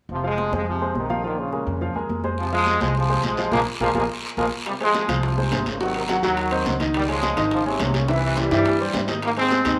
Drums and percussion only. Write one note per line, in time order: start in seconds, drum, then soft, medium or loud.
0.10 high conga soft
0.24 high conga soft
0.38 high conga medium
0.53 high conga medium
0.67 high conga soft
0.81 high conga soft
0.95 high conga medium
1.10 high conga medium
1.24 high conga soft
1.39 high conga soft
1.53 high conga medium
1.67 high conga soft
1.81 high conga soft
1.95 high conga soft
2.10 high conga medium
2.24 high conga medium
2.38 long guiro medium
2.52 high conga soft
2.66 high conga medium
2.66 short guiro medium
2.80 high conga medium
2.80 short guiro medium
2.95 high conga soft
2.95 long guiro medium
3.09 high conga soft
3.23 high conga medium
3.23 short guiro medium
3.37 high conga medium
3.37 short guiro medium
3.52 high conga medium
3.52 long guiro medium
3.80 high conga medium
3.80 long guiro medium
3.95 high conga medium
3.95 long guiro medium
4.37 high conga medium
4.37 long guiro medium
4.66 high bongo medium
4.66 high conga soft
4.66 high timbale medium
4.66 long guiro medium
4.80 high conga soft
4.80 high timbale medium
4.94 high bongo medium
4.94 high conga medium
4.94 short guiro medium
5.09 high bongo soft
5.09 high conga medium
5.09 high timbale medium
5.09 short guiro medium
5.23 high bongo medium
5.23 long guiro medium
5.37 high bongo soft
5.37 high conga soft
5.51 high bongo soft
5.51 low bongo medium
5.51 high conga medium
5.51 high timbale medium
5.51 short guiro medium
5.66 high bongo soft
5.66 high conga medium
5.66 high timbale medium
5.66 short guiro medium
5.80 high bongo medium
5.80 high conga soft
5.80 long guiro medium
5.94 high conga soft
5.94 high timbale medium
6.08 high bongo medium
6.08 high conga medium
6.08 high timbale medium
6.08 short guiro medium
6.23 high bongo soft
6.23 short guiro medium
6.37 high bongo medium
6.37 high conga soft
6.37 high timbale medium
6.37 long guiro medium
6.51 high bongo soft
6.51 high conga soft
6.51 high timbale medium
6.66 high bongo soft
6.66 low bongo medium
6.66 high conga medium
6.66 low timbale medium
6.66 short guiro medium
6.80 high bongo soft
6.80 high conga medium
6.80 high timbale medium
6.80 short guiro medium
6.94 high bongo medium
6.94 high timbale medium
6.94 long guiro medium
7.09 high conga soft
7.09 high timbale medium
7.23 high bongo medium
7.23 high conga medium
7.23 short guiro medium
7.37 high bongo soft
7.37 high conga medium
7.37 high timbale medium
7.37 short guiro medium
7.51 high bongo medium
7.51 high conga soft
7.51 long guiro medium
7.66 high bongo soft
7.66 high conga soft
7.80 high bongo soft
7.80 low bongo medium
7.80 high conga medium
7.80 high timbale medium
7.80 low timbale medium
7.80 short guiro medium
7.94 high bongo soft
7.94 high conga medium
7.94 high timbale medium
7.94 short guiro medium
8.08 high bongo medium
8.08 high conga soft
8.08 high timbale medium
8.08 long guiro medium
8.23 high conga soft
8.37 high bongo medium
8.37 high conga medium
8.37 low timbale medium
8.37 short guiro medium
8.51 high bongo soft
8.51 high conga soft
8.51 high timbale medium
8.51 short guiro medium
8.65 high bongo medium
8.65 high conga soft
8.65 low timbale medium
8.65 long guiro medium
8.80 high bongo soft
8.80 high conga soft
8.94 high bongo soft
8.94 low bongo medium
8.94 high conga medium
8.94 low timbale loud
8.94 short guiro medium
9.08 high bongo soft
9.08 high conga medium
9.08 low timbale medium
9.08 short guiro medium
9.22 high bongo medium
9.22 high conga soft
9.22 high timbale medium
9.22 long guiro medium
9.37 high conga soft
9.37 high timbale medium
9.51 high bongo medium
9.51 high conga medium
9.51 short guiro medium
9.65 high bongo soft
9.65 high conga medium
9.65 high timbale medium
9.65 short guiro medium